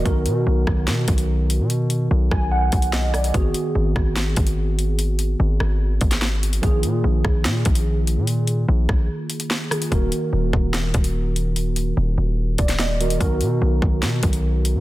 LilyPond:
<<
  \new Staff \with { instrumentName = "Tine electric piano" } { \time 4/4 \key ees \minor \tempo 4 = 146 << { r1 | r4. aes''8 fis''4 dis''8 d''8 | r1 | r1 |
r1 | r1 | r1 | r2 r8 d''8 ees''4 |
r1 | } \\ { <dis b fis' ais'>1~ | <dis b fis' ais'>1 | <ees ces' ges' aes'>1~ | <ees ces' ges' aes'>1 |
<ees bes f' aes'>1~ | <ees bes f' aes'>2.~ <ees bes f' aes'>8 <ees bes f' aes'>8 | <ees bes ges' bes'>1~ | <ees bes ges' bes'>2.~ <ees bes ges' bes'>8 <ees bes ges' bes'>8 |
<dis b fis' ais'>1 | } >> }
  \new Staff \with { instrumentName = "808-style bass" } { \clef bass \time 4/4 \key ees \minor b,,8 b,8 b,,8 b,,8 b,8 b,,4~ b,,16 b,16~ | b,4 b,,8 b,,4 b,,4. | aes,,8 r8 aes,,8 aes,,4 aes,,4.~ | aes,,4 aes,,8 aes,,4 aes,,4. |
bes,,8 bes,8 bes,,8 bes,,8 bes,8 bes,,4~ bes,,16 bes,16~ | bes,4 bes,,8 bes,,8 r2 | ees,,8 r8 ees,,8 ees,,4 ees,,4.~ | ees,,4 ees,,8 ees,,4 ees,,4. |
b,,8 b,8 b,,8 b,,8 b,8 b,,4~ b,,16 b,16 | }
  \new DrumStaff \with { instrumentName = "Drums" } \drummode { \time 4/4 <hh bd>8 hh8 r8 <bd ss>8 <hh sn>8 <hh bd>16 hh16 r8 hh8 | hh8 hh8 r8 <bd ss>8 r8 <hh bd>16 hh16 sn8 <hh ss>16 hh16 | <hh bd>8 hh8 r8 <bd ss>8 <hh sn>8 <hh bd>16 hh16 r8 hh8 | hh8 hh8 r8 ss8 r8 <hh bd>16 <hh sn>16 sn8 hh16 hh16 |
<hh bd>8 hh8 r8 <bd ss>8 <hh sn>8 <hh bd>16 hh16 r8 hh8 | hh8 hh8 r8 <bd ss>8 r8 hh16 hh16 sn8 <hh ss>16 hh16 | <hh bd>8 hh8 r8 bd8 <hh sn>8 <hh bd>16 hh16 r8 hh8 | hh8 hh8 r4 r8 <hh bd>16 <hh sn>16 sn8 hh16 hh16 |
<hh bd>8 hh8 r8 bd8 <hh sn>8 <hh bd>16 hh16 r8 hh8 | }
>>